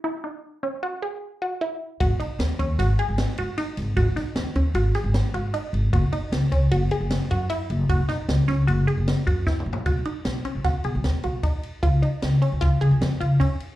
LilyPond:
<<
  \new Staff \with { instrumentName = "Synth arpeggio sound" } { \time 5/4 \key cis \minor \tempo 4 = 153 e'8 dis'4 cis'8 fis'8 gis'4 fis'8 e'4 | fis'8 dis'4 cis'8 fis'8 gis'4 fis'8 dis'4 | fis'8 dis'4 cis'8 fis'8 gis'4 fis'8 dis'4 | fis'8 dis'4 cis'8 fis'8 gis'4 fis'8 e'4 |
fis'8 dis'4 cis'8 fis'8 gis'4 fis'8 e'4 | fis'8 dis'4 cis'8 fis'8 gis'4 fis'8 dis'4 | eis'8 dis'4 cis'8 eis'8 gis'4 eis'8 cis'4 | }
  \new Staff \with { instrumentName = "Upright bass" } { \clef bass \time 5/4 \key cis \minor r1 r4 | gis,,16 b,,8 r16 dis,16 r16 dis,8 gis,,8 r16 gis,,8 r16 gis,8 r8 gis,,8 | gis,,16 b,,8 r16 dis,16 r16 dis,8 gis,,8 r16 gis,,8 r16 gis,8 r8 gis,,8 | fis,,16 b,,8 r16 cis,16 r16 cis,8 fis,,8 r16 fis,,8 r16 fis,8 r8 fis,,8 |
fis,,16 b,,8 r16 cis,16 r16 cis,8 fis,,8 r16 fis,,8 r16 fis,8 r8 ais,,8 | b,,8 r8 b,,8 r16 b,,16 b,,16 r16 b,16 b,,16 dis,16 r16 b,,8 r4 | cis,8 r8 cis,8 r16 cis,16 cis,16 r16 cis16 cis,16 eis,16 r16 cis,8 r4 | }
  \new DrumStaff \with { instrumentName = "Drums" } \drummode { \time 5/4 r4 r4 r4 r4 r4 | <bd cymr>8 cymr8 <cymr sn>8 <bd cymr>8 <cymr sn>8 cymr8 <cymr sn>8 cymr8 <cymr sn>8 <cymr sn>8 | <bd cymr>8 <cymr sn>8 <cymr sn>8 <bd cymr>8 cymr8 <cymr sn>8 <cymr sn>8 cymr8 cymr8 cymr8 | <bd cymr>8 cymr8 <cymr sn>8 <bd cymr>8 cymr8 cymr8 <cymr sn>8 cymr8 cymr8 cymr8 |
<bd cymr>8 <cymr sn>8 <cymr sn>8 <cymr sn>8 cymr8 cymr8 <cymr sn>8 <bd cymr>8 \tuplet 3/2 { <bd sn>8 toml8 tomfh8 } | <bd cymr>8 cymr8 <cymr sn>8 cymr8 <bd cymr sn>8 cymr8 <cymr sn>8 cymr8 <bd cymr>8 cymr8 | <bd cymr>8 cymr8 <cymr sn>8 cymr8 <bd cymr sn>8 cymr8 <cymr sn>8 cymr8 <bd cymr>8 cymr8 | }
>>